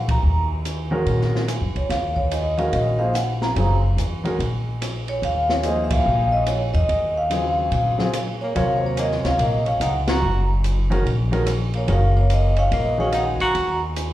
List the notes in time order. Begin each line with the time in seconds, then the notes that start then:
Already playing: A#1
0.08 A#5, kick, ride
0.23 D#2
0.65 hi-hat pedal, ride
0.91 D#3 G#3 C#4 F#4 A#4
1.06 A#2, ride
1.21 snare
1.35 snare
1.48 cross-stick, hi-hat pedal, ride
1.61 F#2
1.76 D2 C#5, ride
1.89 D#2 F5, snare, ride
2.16 C#5, kick
2.31 D#5, hi-hat pedal, ride
2.58 D#3 G#3 C#4 F#4 A#4 F5, ride
2.73 A#1 D#5, ride
2.99 F3 A#3 D#4 G#4 C5 F5
3.14 F#5, cross-stick, hi-hat pedal, ride
3.42 A#5, snare
3.56 F#1 C#3 F#3 C4 F4 G#4, ride
3.97 E2, hi-hat pedal, ride
4.24 D#3 G#3 C#4 F#4 A#4, ride
4.39 A#1, ride
4.82 cross-stick, hi-hat pedal, ride
5.08 C#5, ride
5.22 D#2 F5, ride
5.49 C#5, snare
5.63 F3 A#3 D#4 G#4 C5 D#5, hi-hat pedal, ride
5.84 E5
5.90 F5, kick, ride
6.06 A#1
6.32 D#5
6.46 C#5, cross-stick, hi-hat pedal, ride
6.74 E2 D#5, ride
6.89 D#2, ride
7.17 F5
7.30 C#3 F#3 C4 F4 G#4, hi-hat pedal, ride
7.71 A#2, ride
7.98 C#3 F#3 C4 F4 G#4, snare
8.13 cross-stick, hi-hat pedal, ride
8.41 A#3 C#5
8.55 D#2 C3 F#3 C#4 F4 A#4 C#5 F5, ride
8.76 G#3 C5
8.85 A#3 C#5
8.97 A#3 D#5, hi-hat pedal, ride
9.11 snare
9.24 D2 C#4 F5, snare, ride
9.39 A#1 A#3 D#5, ride
9.66 C#4 F5, ride
9.80 C#2 D#4 F#5, cross-stick, hi-hat pedal, ride
10.08 F#4 A#5, snare, ride
10.22 F#1
10.64 hi-hat pedal, ride
10.90 D#3 G#3 C#4 F#4 A#4, ride
11.06 A#1, ride
11.31 D#3 G#3 C#4 F#4 A#4, ride
11.46 cross-stick, hi-hat pedal, ride
11.74 A#3 C#5, ride
11.87 F#1 D#3 G#3 C#4 F#4 A#4, ride
11.92 F5
12.16 A#3 C#5
12.29 A#3, hi-hat pedal, ride
12.33 D#5
12.56 C#4 F5, ride
12.72 A#1 A#3 D#5, ride
12.98 D#3 G#3 C#4 F#4 G#4 F5
13.12 D#4, cross-stick, hi-hat pedal, ride
13.17 F#5
13.40 F#4 A#5, muted upright bass stroke, ride
13.55 D#2, ride
13.96 hi-hat pedal, ride